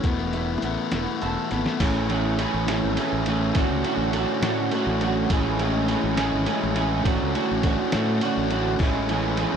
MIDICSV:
0, 0, Header, 1, 5, 480
1, 0, Start_track
1, 0, Key_signature, 3, "major"
1, 0, Tempo, 583658
1, 44, Time_signature, 6, 3, 24, 8
1, 7867, End_track
2, 0, Start_track
2, 0, Title_t, "Clean electric guitar"
2, 0, Program_c, 0, 27
2, 0, Note_on_c, 0, 64, 65
2, 273, Note_off_c, 0, 64, 0
2, 1003, Note_on_c, 0, 69, 64
2, 1487, Note_off_c, 0, 69, 0
2, 1494, Note_on_c, 0, 68, 95
2, 1728, Note_off_c, 0, 68, 0
2, 1738, Note_on_c, 0, 68, 89
2, 1966, Note_off_c, 0, 68, 0
2, 1976, Note_on_c, 0, 68, 100
2, 2205, Note_off_c, 0, 68, 0
2, 2215, Note_on_c, 0, 68, 94
2, 2454, Note_off_c, 0, 68, 0
2, 2464, Note_on_c, 0, 68, 93
2, 2694, Note_off_c, 0, 68, 0
2, 2703, Note_on_c, 0, 68, 85
2, 2923, Note_off_c, 0, 68, 0
2, 2932, Note_on_c, 0, 61, 110
2, 3166, Note_off_c, 0, 61, 0
2, 3170, Note_on_c, 0, 61, 98
2, 3408, Note_off_c, 0, 61, 0
2, 3411, Note_on_c, 0, 61, 94
2, 3648, Note_off_c, 0, 61, 0
2, 3651, Note_on_c, 0, 61, 84
2, 3904, Note_off_c, 0, 61, 0
2, 3907, Note_on_c, 0, 61, 88
2, 4137, Note_off_c, 0, 61, 0
2, 4140, Note_on_c, 0, 61, 88
2, 4370, Note_on_c, 0, 56, 91
2, 4373, Note_off_c, 0, 61, 0
2, 4376, Note_on_c, 0, 68, 103
2, 4599, Note_off_c, 0, 56, 0
2, 4605, Note_off_c, 0, 68, 0
2, 4609, Note_on_c, 0, 56, 96
2, 4615, Note_on_c, 0, 68, 85
2, 4824, Note_off_c, 0, 56, 0
2, 4834, Note_on_c, 0, 56, 93
2, 4836, Note_off_c, 0, 68, 0
2, 4845, Note_on_c, 0, 68, 98
2, 5064, Note_off_c, 0, 56, 0
2, 5067, Note_off_c, 0, 68, 0
2, 5074, Note_on_c, 0, 56, 89
2, 5077, Note_on_c, 0, 68, 97
2, 5302, Note_off_c, 0, 56, 0
2, 5310, Note_off_c, 0, 68, 0
2, 5312, Note_on_c, 0, 56, 83
2, 5320, Note_on_c, 0, 68, 93
2, 5539, Note_off_c, 0, 56, 0
2, 5549, Note_on_c, 0, 56, 89
2, 5552, Note_off_c, 0, 68, 0
2, 5562, Note_on_c, 0, 68, 89
2, 5783, Note_off_c, 0, 56, 0
2, 5789, Note_off_c, 0, 68, 0
2, 5797, Note_on_c, 0, 61, 97
2, 6043, Note_off_c, 0, 61, 0
2, 6046, Note_on_c, 0, 61, 90
2, 6295, Note_off_c, 0, 61, 0
2, 6299, Note_on_c, 0, 61, 91
2, 6524, Note_off_c, 0, 61, 0
2, 6527, Note_on_c, 0, 61, 77
2, 6764, Note_off_c, 0, 61, 0
2, 6768, Note_on_c, 0, 61, 91
2, 6999, Note_off_c, 0, 61, 0
2, 7003, Note_on_c, 0, 61, 73
2, 7247, Note_off_c, 0, 61, 0
2, 7252, Note_on_c, 0, 56, 96
2, 7259, Note_on_c, 0, 68, 88
2, 7476, Note_off_c, 0, 56, 0
2, 7485, Note_off_c, 0, 68, 0
2, 7486, Note_on_c, 0, 56, 83
2, 7495, Note_on_c, 0, 68, 108
2, 7702, Note_off_c, 0, 56, 0
2, 7712, Note_on_c, 0, 56, 91
2, 7716, Note_off_c, 0, 68, 0
2, 7726, Note_on_c, 0, 68, 99
2, 7867, Note_off_c, 0, 56, 0
2, 7867, Note_off_c, 0, 68, 0
2, 7867, End_track
3, 0, Start_track
3, 0, Title_t, "Distorted electric guitar"
3, 0, Program_c, 1, 30
3, 44, Note_on_c, 1, 52, 76
3, 47, Note_on_c, 1, 57, 85
3, 49, Note_on_c, 1, 59, 86
3, 55, Note_on_c, 1, 64, 84
3, 281, Note_off_c, 1, 64, 0
3, 283, Note_off_c, 1, 59, 0
3, 284, Note_off_c, 1, 57, 0
3, 285, Note_off_c, 1, 52, 0
3, 291, Note_on_c, 1, 64, 69
3, 293, Note_on_c, 1, 59, 61
3, 294, Note_on_c, 1, 57, 55
3, 298, Note_on_c, 1, 52, 59
3, 521, Note_off_c, 1, 52, 0
3, 521, Note_off_c, 1, 57, 0
3, 525, Note_off_c, 1, 59, 0
3, 527, Note_off_c, 1, 64, 0
3, 531, Note_on_c, 1, 52, 61
3, 531, Note_on_c, 1, 57, 62
3, 535, Note_on_c, 1, 59, 67
3, 537, Note_on_c, 1, 64, 73
3, 763, Note_off_c, 1, 64, 0
3, 769, Note_off_c, 1, 57, 0
3, 770, Note_off_c, 1, 52, 0
3, 772, Note_off_c, 1, 59, 0
3, 773, Note_on_c, 1, 64, 79
3, 781, Note_on_c, 1, 57, 68
3, 781, Note_on_c, 1, 59, 71
3, 782, Note_on_c, 1, 52, 65
3, 990, Note_off_c, 1, 52, 0
3, 992, Note_off_c, 1, 57, 0
3, 998, Note_off_c, 1, 59, 0
3, 1000, Note_on_c, 1, 52, 65
3, 1002, Note_on_c, 1, 57, 65
3, 1004, Note_off_c, 1, 64, 0
3, 1008, Note_on_c, 1, 59, 58
3, 1013, Note_on_c, 1, 64, 67
3, 1231, Note_off_c, 1, 64, 0
3, 1234, Note_off_c, 1, 59, 0
3, 1239, Note_off_c, 1, 57, 0
3, 1241, Note_on_c, 1, 64, 71
3, 1244, Note_on_c, 1, 59, 64
3, 1245, Note_off_c, 1, 52, 0
3, 1249, Note_on_c, 1, 57, 60
3, 1255, Note_on_c, 1, 52, 52
3, 1480, Note_on_c, 1, 45, 96
3, 1481, Note_off_c, 1, 52, 0
3, 1482, Note_off_c, 1, 57, 0
3, 1486, Note_off_c, 1, 64, 0
3, 1487, Note_off_c, 1, 59, 0
3, 1491, Note_on_c, 1, 52, 97
3, 1492, Note_on_c, 1, 57, 103
3, 1497, Note_on_c, 1, 61, 111
3, 1503, Note_on_c, 1, 64, 105
3, 1721, Note_off_c, 1, 45, 0
3, 1721, Note_off_c, 1, 52, 0
3, 1724, Note_on_c, 1, 45, 77
3, 1730, Note_off_c, 1, 57, 0
3, 1731, Note_on_c, 1, 52, 74
3, 1732, Note_off_c, 1, 64, 0
3, 1734, Note_on_c, 1, 57, 82
3, 1735, Note_off_c, 1, 61, 0
3, 1738, Note_on_c, 1, 61, 97
3, 1742, Note_on_c, 1, 64, 74
3, 1956, Note_off_c, 1, 52, 0
3, 1962, Note_off_c, 1, 45, 0
3, 1965, Note_on_c, 1, 45, 79
3, 1966, Note_on_c, 1, 52, 76
3, 1968, Note_off_c, 1, 57, 0
3, 1971, Note_on_c, 1, 57, 78
3, 1974, Note_off_c, 1, 64, 0
3, 1976, Note_off_c, 1, 61, 0
3, 1980, Note_on_c, 1, 61, 81
3, 1984, Note_on_c, 1, 64, 92
3, 2191, Note_off_c, 1, 45, 0
3, 2194, Note_off_c, 1, 52, 0
3, 2194, Note_on_c, 1, 45, 79
3, 2204, Note_off_c, 1, 57, 0
3, 2204, Note_on_c, 1, 52, 89
3, 2206, Note_off_c, 1, 64, 0
3, 2207, Note_on_c, 1, 57, 102
3, 2210, Note_off_c, 1, 61, 0
3, 2214, Note_on_c, 1, 61, 100
3, 2216, Note_on_c, 1, 64, 103
3, 2423, Note_off_c, 1, 52, 0
3, 2424, Note_off_c, 1, 45, 0
3, 2428, Note_on_c, 1, 45, 92
3, 2432, Note_on_c, 1, 52, 92
3, 2438, Note_off_c, 1, 57, 0
3, 2441, Note_off_c, 1, 61, 0
3, 2441, Note_off_c, 1, 64, 0
3, 2441, Note_on_c, 1, 57, 98
3, 2444, Note_on_c, 1, 61, 89
3, 2451, Note_on_c, 1, 64, 90
3, 2677, Note_off_c, 1, 52, 0
3, 2678, Note_off_c, 1, 45, 0
3, 2681, Note_on_c, 1, 45, 86
3, 2687, Note_on_c, 1, 52, 82
3, 2689, Note_off_c, 1, 57, 0
3, 2690, Note_off_c, 1, 64, 0
3, 2692, Note_on_c, 1, 57, 91
3, 2695, Note_off_c, 1, 61, 0
3, 2699, Note_on_c, 1, 61, 84
3, 2700, Note_on_c, 1, 64, 88
3, 2912, Note_off_c, 1, 45, 0
3, 2912, Note_off_c, 1, 52, 0
3, 2915, Note_on_c, 1, 45, 105
3, 2915, Note_on_c, 1, 50, 117
3, 2921, Note_off_c, 1, 64, 0
3, 2922, Note_off_c, 1, 57, 0
3, 2926, Note_on_c, 1, 57, 108
3, 2928, Note_off_c, 1, 61, 0
3, 2931, Note_on_c, 1, 62, 114
3, 2935, Note_on_c, 1, 66, 111
3, 3148, Note_off_c, 1, 45, 0
3, 3150, Note_off_c, 1, 50, 0
3, 3151, Note_on_c, 1, 45, 79
3, 3157, Note_off_c, 1, 62, 0
3, 3159, Note_on_c, 1, 50, 83
3, 3161, Note_off_c, 1, 57, 0
3, 3164, Note_on_c, 1, 57, 75
3, 3167, Note_off_c, 1, 66, 0
3, 3167, Note_on_c, 1, 62, 73
3, 3176, Note_on_c, 1, 66, 77
3, 3391, Note_off_c, 1, 50, 0
3, 3392, Note_off_c, 1, 45, 0
3, 3396, Note_on_c, 1, 45, 88
3, 3400, Note_on_c, 1, 50, 96
3, 3401, Note_off_c, 1, 57, 0
3, 3401, Note_off_c, 1, 62, 0
3, 3404, Note_off_c, 1, 66, 0
3, 3404, Note_on_c, 1, 57, 83
3, 3411, Note_on_c, 1, 62, 92
3, 3413, Note_on_c, 1, 66, 95
3, 3623, Note_off_c, 1, 45, 0
3, 3625, Note_off_c, 1, 50, 0
3, 3626, Note_on_c, 1, 45, 92
3, 3634, Note_off_c, 1, 57, 0
3, 3635, Note_off_c, 1, 62, 0
3, 3635, Note_on_c, 1, 50, 88
3, 3638, Note_on_c, 1, 57, 105
3, 3639, Note_off_c, 1, 66, 0
3, 3645, Note_on_c, 1, 62, 89
3, 3648, Note_on_c, 1, 66, 96
3, 3877, Note_off_c, 1, 50, 0
3, 3878, Note_off_c, 1, 45, 0
3, 3881, Note_on_c, 1, 45, 86
3, 3882, Note_off_c, 1, 62, 0
3, 3887, Note_on_c, 1, 50, 89
3, 3888, Note_off_c, 1, 57, 0
3, 3891, Note_off_c, 1, 66, 0
3, 3892, Note_on_c, 1, 57, 86
3, 3892, Note_on_c, 1, 62, 101
3, 3900, Note_on_c, 1, 66, 87
3, 4113, Note_off_c, 1, 50, 0
3, 4114, Note_off_c, 1, 45, 0
3, 4117, Note_on_c, 1, 45, 92
3, 4121, Note_off_c, 1, 62, 0
3, 4123, Note_off_c, 1, 57, 0
3, 4123, Note_on_c, 1, 50, 89
3, 4124, Note_off_c, 1, 66, 0
3, 4126, Note_on_c, 1, 57, 87
3, 4131, Note_on_c, 1, 62, 93
3, 4134, Note_on_c, 1, 66, 106
3, 4351, Note_off_c, 1, 50, 0
3, 4352, Note_off_c, 1, 45, 0
3, 4355, Note_on_c, 1, 45, 100
3, 4356, Note_off_c, 1, 62, 0
3, 4357, Note_off_c, 1, 66, 0
3, 4363, Note_off_c, 1, 57, 0
3, 4365, Note_on_c, 1, 52, 114
3, 4366, Note_on_c, 1, 57, 117
3, 4371, Note_on_c, 1, 61, 107
3, 4375, Note_on_c, 1, 64, 115
3, 4596, Note_off_c, 1, 52, 0
3, 4599, Note_off_c, 1, 45, 0
3, 4602, Note_on_c, 1, 45, 75
3, 4606, Note_on_c, 1, 52, 73
3, 4607, Note_off_c, 1, 57, 0
3, 4608, Note_off_c, 1, 64, 0
3, 4611, Note_on_c, 1, 57, 99
3, 4614, Note_off_c, 1, 61, 0
3, 4617, Note_on_c, 1, 61, 95
3, 4618, Note_on_c, 1, 64, 85
3, 4837, Note_off_c, 1, 52, 0
3, 4838, Note_off_c, 1, 45, 0
3, 4841, Note_on_c, 1, 45, 74
3, 4846, Note_off_c, 1, 57, 0
3, 4847, Note_on_c, 1, 52, 90
3, 4849, Note_on_c, 1, 57, 87
3, 4851, Note_off_c, 1, 61, 0
3, 4853, Note_off_c, 1, 64, 0
3, 4855, Note_on_c, 1, 61, 84
3, 4863, Note_on_c, 1, 64, 89
3, 5077, Note_off_c, 1, 52, 0
3, 5082, Note_off_c, 1, 45, 0
3, 5085, Note_on_c, 1, 45, 89
3, 5087, Note_on_c, 1, 52, 98
3, 5091, Note_off_c, 1, 64, 0
3, 5094, Note_off_c, 1, 57, 0
3, 5098, Note_on_c, 1, 57, 94
3, 5101, Note_off_c, 1, 61, 0
3, 5101, Note_on_c, 1, 64, 108
3, 5104, Note_on_c, 1, 61, 102
3, 5323, Note_off_c, 1, 45, 0
3, 5324, Note_off_c, 1, 52, 0
3, 5326, Note_on_c, 1, 45, 89
3, 5333, Note_off_c, 1, 57, 0
3, 5334, Note_on_c, 1, 52, 86
3, 5335, Note_off_c, 1, 64, 0
3, 5337, Note_on_c, 1, 57, 83
3, 5338, Note_off_c, 1, 61, 0
3, 5341, Note_on_c, 1, 61, 90
3, 5345, Note_on_c, 1, 64, 99
3, 5554, Note_off_c, 1, 52, 0
3, 5555, Note_off_c, 1, 45, 0
3, 5558, Note_on_c, 1, 45, 82
3, 5564, Note_on_c, 1, 52, 93
3, 5565, Note_off_c, 1, 64, 0
3, 5567, Note_off_c, 1, 57, 0
3, 5568, Note_off_c, 1, 61, 0
3, 5570, Note_on_c, 1, 57, 93
3, 5571, Note_on_c, 1, 61, 93
3, 5575, Note_on_c, 1, 64, 89
3, 5782, Note_off_c, 1, 45, 0
3, 5785, Note_on_c, 1, 45, 109
3, 5790, Note_off_c, 1, 52, 0
3, 5793, Note_on_c, 1, 50, 112
3, 5796, Note_off_c, 1, 64, 0
3, 5797, Note_off_c, 1, 57, 0
3, 5800, Note_on_c, 1, 57, 102
3, 5801, Note_off_c, 1, 61, 0
3, 5804, Note_on_c, 1, 62, 116
3, 5808, Note_on_c, 1, 66, 118
3, 6026, Note_off_c, 1, 50, 0
3, 6030, Note_off_c, 1, 45, 0
3, 6033, Note_on_c, 1, 45, 74
3, 6036, Note_on_c, 1, 50, 74
3, 6041, Note_off_c, 1, 57, 0
3, 6042, Note_off_c, 1, 66, 0
3, 6043, Note_off_c, 1, 62, 0
3, 6044, Note_on_c, 1, 57, 77
3, 6052, Note_on_c, 1, 66, 87
3, 6053, Note_on_c, 1, 62, 78
3, 6270, Note_off_c, 1, 50, 0
3, 6274, Note_off_c, 1, 45, 0
3, 6277, Note_on_c, 1, 45, 75
3, 6280, Note_on_c, 1, 50, 85
3, 6283, Note_off_c, 1, 57, 0
3, 6284, Note_off_c, 1, 62, 0
3, 6284, Note_off_c, 1, 66, 0
3, 6286, Note_on_c, 1, 57, 88
3, 6293, Note_on_c, 1, 62, 93
3, 6294, Note_on_c, 1, 66, 79
3, 6523, Note_off_c, 1, 45, 0
3, 6526, Note_off_c, 1, 50, 0
3, 6526, Note_on_c, 1, 45, 101
3, 6531, Note_off_c, 1, 62, 0
3, 6534, Note_off_c, 1, 57, 0
3, 6535, Note_off_c, 1, 66, 0
3, 6536, Note_on_c, 1, 50, 93
3, 6537, Note_on_c, 1, 57, 87
3, 6541, Note_on_c, 1, 62, 101
3, 6544, Note_on_c, 1, 66, 99
3, 6759, Note_off_c, 1, 50, 0
3, 6760, Note_off_c, 1, 45, 0
3, 6763, Note_on_c, 1, 45, 84
3, 6769, Note_off_c, 1, 62, 0
3, 6769, Note_on_c, 1, 50, 93
3, 6772, Note_off_c, 1, 57, 0
3, 6773, Note_off_c, 1, 66, 0
3, 6775, Note_on_c, 1, 57, 80
3, 6779, Note_on_c, 1, 62, 96
3, 6783, Note_on_c, 1, 66, 93
3, 6995, Note_off_c, 1, 45, 0
3, 6998, Note_on_c, 1, 45, 85
3, 6999, Note_off_c, 1, 50, 0
3, 7007, Note_off_c, 1, 57, 0
3, 7009, Note_off_c, 1, 62, 0
3, 7009, Note_off_c, 1, 66, 0
3, 7009, Note_on_c, 1, 50, 87
3, 7010, Note_on_c, 1, 57, 87
3, 7019, Note_on_c, 1, 62, 92
3, 7019, Note_on_c, 1, 66, 82
3, 7231, Note_off_c, 1, 50, 0
3, 7236, Note_off_c, 1, 62, 0
3, 7236, Note_off_c, 1, 66, 0
3, 7237, Note_off_c, 1, 45, 0
3, 7240, Note_on_c, 1, 45, 97
3, 7247, Note_on_c, 1, 52, 106
3, 7249, Note_off_c, 1, 57, 0
3, 7253, Note_on_c, 1, 57, 112
3, 7255, Note_on_c, 1, 61, 105
3, 7259, Note_on_c, 1, 64, 100
3, 7483, Note_off_c, 1, 52, 0
3, 7484, Note_off_c, 1, 45, 0
3, 7487, Note_on_c, 1, 45, 69
3, 7493, Note_off_c, 1, 57, 0
3, 7493, Note_on_c, 1, 52, 85
3, 7496, Note_on_c, 1, 57, 70
3, 7497, Note_off_c, 1, 61, 0
3, 7497, Note_off_c, 1, 64, 0
3, 7500, Note_on_c, 1, 61, 79
3, 7507, Note_on_c, 1, 64, 89
3, 7719, Note_off_c, 1, 45, 0
3, 7722, Note_off_c, 1, 52, 0
3, 7722, Note_on_c, 1, 45, 68
3, 7732, Note_on_c, 1, 52, 83
3, 7733, Note_off_c, 1, 57, 0
3, 7735, Note_off_c, 1, 64, 0
3, 7736, Note_on_c, 1, 57, 84
3, 7740, Note_off_c, 1, 61, 0
3, 7744, Note_on_c, 1, 61, 91
3, 7744, Note_on_c, 1, 64, 94
3, 7867, Note_off_c, 1, 45, 0
3, 7867, Note_off_c, 1, 52, 0
3, 7867, Note_off_c, 1, 57, 0
3, 7867, Note_off_c, 1, 61, 0
3, 7867, Note_off_c, 1, 64, 0
3, 7867, End_track
4, 0, Start_track
4, 0, Title_t, "Fingered electric bass"
4, 0, Program_c, 2, 33
4, 31, Note_on_c, 2, 28, 76
4, 460, Note_off_c, 2, 28, 0
4, 513, Note_on_c, 2, 33, 67
4, 625, Note_off_c, 2, 33, 0
4, 757, Note_on_c, 2, 28, 70
4, 867, Note_off_c, 2, 28, 0
4, 1010, Note_on_c, 2, 28, 77
4, 1115, Note_off_c, 2, 28, 0
4, 1249, Note_on_c, 2, 32, 90
4, 1354, Note_off_c, 2, 32, 0
4, 1480, Note_on_c, 2, 33, 82
4, 2012, Note_off_c, 2, 33, 0
4, 2091, Note_on_c, 2, 33, 97
4, 2302, Note_off_c, 2, 33, 0
4, 2334, Note_on_c, 2, 32, 83
4, 2438, Note_off_c, 2, 32, 0
4, 2570, Note_on_c, 2, 33, 90
4, 2887, Note_off_c, 2, 33, 0
4, 2925, Note_on_c, 2, 33, 91
4, 3033, Note_off_c, 2, 33, 0
4, 3037, Note_on_c, 2, 37, 83
4, 3149, Note_off_c, 2, 37, 0
4, 3268, Note_on_c, 2, 33, 80
4, 3488, Note_off_c, 2, 33, 0
4, 3636, Note_on_c, 2, 45, 90
4, 3853, Note_off_c, 2, 45, 0
4, 4002, Note_on_c, 2, 33, 94
4, 4321, Note_off_c, 2, 33, 0
4, 4358, Note_on_c, 2, 33, 85
4, 4889, Note_off_c, 2, 33, 0
4, 4964, Note_on_c, 2, 33, 95
4, 5176, Note_off_c, 2, 33, 0
4, 5208, Note_on_c, 2, 32, 84
4, 5313, Note_off_c, 2, 32, 0
4, 5455, Note_on_c, 2, 33, 84
4, 5767, Note_off_c, 2, 33, 0
4, 5796, Note_on_c, 2, 33, 98
4, 5906, Note_off_c, 2, 33, 0
4, 5941, Note_on_c, 2, 37, 81
4, 6040, Note_off_c, 2, 37, 0
4, 6179, Note_on_c, 2, 33, 78
4, 6383, Note_off_c, 2, 33, 0
4, 6533, Note_on_c, 2, 45, 89
4, 6740, Note_off_c, 2, 45, 0
4, 6886, Note_on_c, 2, 33, 91
4, 7200, Note_off_c, 2, 33, 0
4, 7236, Note_on_c, 2, 33, 94
4, 7764, Note_off_c, 2, 33, 0
4, 7867, End_track
5, 0, Start_track
5, 0, Title_t, "Drums"
5, 30, Note_on_c, 9, 42, 60
5, 31, Note_on_c, 9, 36, 82
5, 112, Note_off_c, 9, 42, 0
5, 114, Note_off_c, 9, 36, 0
5, 272, Note_on_c, 9, 42, 55
5, 355, Note_off_c, 9, 42, 0
5, 512, Note_on_c, 9, 42, 53
5, 594, Note_off_c, 9, 42, 0
5, 752, Note_on_c, 9, 42, 63
5, 754, Note_on_c, 9, 38, 92
5, 834, Note_off_c, 9, 42, 0
5, 837, Note_off_c, 9, 38, 0
5, 1000, Note_on_c, 9, 42, 51
5, 1082, Note_off_c, 9, 42, 0
5, 1239, Note_on_c, 9, 42, 45
5, 1242, Note_on_c, 9, 38, 46
5, 1321, Note_off_c, 9, 42, 0
5, 1324, Note_off_c, 9, 38, 0
5, 1364, Note_on_c, 9, 38, 77
5, 1446, Note_off_c, 9, 38, 0
5, 1481, Note_on_c, 9, 49, 116
5, 1481, Note_on_c, 9, 51, 95
5, 1482, Note_on_c, 9, 36, 97
5, 1563, Note_off_c, 9, 49, 0
5, 1563, Note_off_c, 9, 51, 0
5, 1564, Note_off_c, 9, 36, 0
5, 1724, Note_on_c, 9, 51, 72
5, 1807, Note_off_c, 9, 51, 0
5, 1963, Note_on_c, 9, 51, 80
5, 2045, Note_off_c, 9, 51, 0
5, 2204, Note_on_c, 9, 51, 104
5, 2207, Note_on_c, 9, 38, 107
5, 2287, Note_off_c, 9, 51, 0
5, 2289, Note_off_c, 9, 38, 0
5, 2442, Note_on_c, 9, 51, 88
5, 2524, Note_off_c, 9, 51, 0
5, 2681, Note_on_c, 9, 51, 82
5, 2763, Note_off_c, 9, 51, 0
5, 2917, Note_on_c, 9, 51, 93
5, 2923, Note_on_c, 9, 36, 104
5, 3000, Note_off_c, 9, 51, 0
5, 3005, Note_off_c, 9, 36, 0
5, 3162, Note_on_c, 9, 51, 81
5, 3244, Note_off_c, 9, 51, 0
5, 3398, Note_on_c, 9, 51, 75
5, 3480, Note_off_c, 9, 51, 0
5, 3639, Note_on_c, 9, 51, 106
5, 3642, Note_on_c, 9, 38, 114
5, 3721, Note_off_c, 9, 51, 0
5, 3724, Note_off_c, 9, 38, 0
5, 3877, Note_on_c, 9, 51, 74
5, 3959, Note_off_c, 9, 51, 0
5, 4120, Note_on_c, 9, 51, 68
5, 4202, Note_off_c, 9, 51, 0
5, 4358, Note_on_c, 9, 51, 96
5, 4360, Note_on_c, 9, 36, 103
5, 4440, Note_off_c, 9, 51, 0
5, 4442, Note_off_c, 9, 36, 0
5, 4601, Note_on_c, 9, 51, 76
5, 4683, Note_off_c, 9, 51, 0
5, 4839, Note_on_c, 9, 51, 71
5, 4921, Note_off_c, 9, 51, 0
5, 5077, Note_on_c, 9, 51, 99
5, 5080, Note_on_c, 9, 38, 115
5, 5159, Note_off_c, 9, 51, 0
5, 5162, Note_off_c, 9, 38, 0
5, 5316, Note_on_c, 9, 51, 79
5, 5398, Note_off_c, 9, 51, 0
5, 5557, Note_on_c, 9, 51, 77
5, 5639, Note_off_c, 9, 51, 0
5, 5800, Note_on_c, 9, 36, 102
5, 5802, Note_on_c, 9, 51, 89
5, 5883, Note_off_c, 9, 36, 0
5, 5885, Note_off_c, 9, 51, 0
5, 6046, Note_on_c, 9, 51, 85
5, 6128, Note_off_c, 9, 51, 0
5, 6277, Note_on_c, 9, 51, 79
5, 6280, Note_on_c, 9, 36, 80
5, 6359, Note_off_c, 9, 51, 0
5, 6362, Note_off_c, 9, 36, 0
5, 6514, Note_on_c, 9, 51, 107
5, 6517, Note_on_c, 9, 38, 118
5, 6597, Note_off_c, 9, 51, 0
5, 6599, Note_off_c, 9, 38, 0
5, 6754, Note_on_c, 9, 51, 86
5, 6836, Note_off_c, 9, 51, 0
5, 6994, Note_on_c, 9, 51, 71
5, 7076, Note_off_c, 9, 51, 0
5, 7228, Note_on_c, 9, 49, 90
5, 7237, Note_on_c, 9, 36, 109
5, 7311, Note_off_c, 9, 49, 0
5, 7320, Note_off_c, 9, 36, 0
5, 7475, Note_on_c, 9, 51, 72
5, 7557, Note_off_c, 9, 51, 0
5, 7708, Note_on_c, 9, 51, 78
5, 7790, Note_off_c, 9, 51, 0
5, 7867, End_track
0, 0, End_of_file